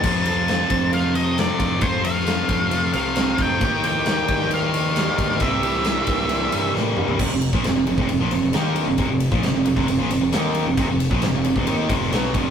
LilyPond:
<<
  \new Staff \with { instrumentName = "Lead electric guitar" } { \time 4/4 \key f \mixolydian \tempo 4 = 134 a''8 a''4. f''8 ees''8 d''4 | c''8 f''2 f''4 g''8~ | g''8 g''4. f''2 | e''2. r4 |
\key c \mixolydian r1 | r1 | r1 | }
  \new Staff \with { instrumentName = "String machine" } { \time 4/4 \key f \mixolydian \tuplet 3/2 { <des' ges' bes'>8 <c' f' a' f''>4~ } <c' f' a' f''>2.~ | <c' f' a' f''>1 | <ees' g' bes' f''>1 | <c' g' bes' e''>1 |
\key c \mixolydian <c' f' a' f''>1~ | <c' f' a' f''>1 | <c' f' a'>1 | }
  \new Staff \with { instrumentName = "Distorted electric guitar" } { \clef bass \time 4/4 \key f \mixolydian <f, c f a c' f'>1 | <f, c f a c' f'>1 | <ees bes ees' g'>1 | <c e g c' g'>1 |
\key c \mixolydian <f, c>16 <f, c>8 <bes, f>16 <f, c>16 <f, c>16 <f, c>16 <f, c>16 <f, c>16 <bes, f>16 <f, c>16 <f, c>16 <ees bes ees'>8. <f, c>16 | <f, c>16 <f, c>8 <bes, f>16 <f, c>16 <f, c>16 <f, c>16 <f, c>16 <f, c>16 <bes, f>16 <f, c>16 <f, c>16 <ees bes ees'>8. <f, c>16 | <f, c>16 <f, c>8 <bes, f>16 <f, c>16 <f, c>16 <f, c>16 <f, c>16 <ees bes ees'>8 <f, c f>8 <b, ges b>8 <f, c f>8 | }
  \new Staff \with { instrumentName = "Overdriven electric guitar" } { \clef bass \time 4/4 \key f \mixolydian f8 f8 f'8 c'8 f'8 f8 c'8 f8 | f8 f8 f'8 c'8 f'8 f8 c'8 f8 | ees8 f8 ees'8 g8 ees'8 f8 g8 f8 | c8 g8 e'8 bes8 e'8 g8 bes8 g8 |
\key c \mixolydian <f, c>16 <f, c>8 <bes, f>16 <f, c>16 <f, c>16 <f, c>16 <f, c>16 <f, c>16 <bes, f>16 <f, c>16 <f, c>16 <ees bes ees'>8. <f, c>16 | <f, c>16 <f, c>8 <bes, f>16 <f, c>16 <f, c>16 <f, c>16 <f, c>16 <f, c>16 <bes, f>16 <f, c>16 <f, c>16 <ees bes ees'>8. <f, c>16 | <f, c>16 <f, c>8 <bes, f>16 <f, c>16 <f, c>16 <f, c>16 <f, c>16 <ees bes ees'>8 <f, c f>8 <b, ges b>8 <f, c f>8 | }
  \new Staff \with { instrumentName = "Fingered electric bass" } { \clef bass \time 4/4 \key f \mixolydian f,4. f,2 f,8 | f,4. f,4 c,4 f,8 | ees,4. ees,2 d,8 | c,4. c,4 g,8 a,8 g,8 |
\key c \mixolydian f,,16 f,,8 bes,,16 f,,16 f,,16 f,,16 f,,16 f,,16 bes,,16 f,,16 f,,16 ees,8. f,,16 | f,,16 f,,8 bes,,16 f,,16 f,,16 f,,16 f,,16 f,,16 bes,,16 f,,16 f,,16 ees,8. f,,16 | f,,16 f,,8 bes,,16 f,,16 f,,16 f,,16 f,,16 ees,8 f,,8 b,,8 f,,8 | }
  \new DrumStaff \with { instrumentName = "Drums" } \drummode { \time 4/4 <cymc bd cymr>8 cymr8 <cymr sn>8 <bd cymr>8 cymr8 cymr8 <cymr sn>8 <bd cymr>8 | <bd cymr>8 cymr16 sn16 <cymr sn>8 <bd cymr>8 cymr8 cymr8 <cymr sn>8 <bd cymr>8 | <bd cymr>8 cymr8 <cymr sn>8 <bd cymr>16 sn16 cymr8 cymr8 <cymr sn>8 <bd cymr>8 | <bd cymr>8 cymr16 sn16 <cymr sn>8 <bd cymr>16 sn16 cymr8 cymr8 sn8 toml16 tomfh16 |
<cymc bd>8 cymr16 bd16 <cymr sn>8 cymr16 bd16 cymr8 cymr16 sn16 <cymr sn>8 cymr8 | <bd cymr>8 cymr16 bd16 <cymr sn>8 cymr16 bd16 cymr8 cymr8 <cymr sn>8 cymr8 | <bd cymr>8 cymr16 bd16 <cymr sn>8 cymr16 bd16 cymr8 <bd cymr>16 sn16 <cymr sn>8 <bd cymr>8 | }
>>